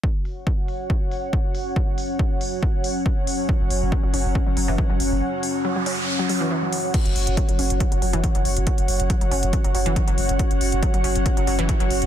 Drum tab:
CC |----------------|----------------|----------------|----------------|
HH |--o---o---o---o-|--o---o---o---o-|--o---o---o---o-|--o---o---o---o-|
BD |o---o---o---o---|o---o---o---o---|o---o---o---o---|----------------|

CC |x---------------|----------------|----------------|
HH |xxoxxxoxxxoxxxox|xxoxxxoxxxoxxxox|xxoxxxoxxxoxxxox|
BD |o---o---o---o---|o---o---o---o---|o---o---o---o---|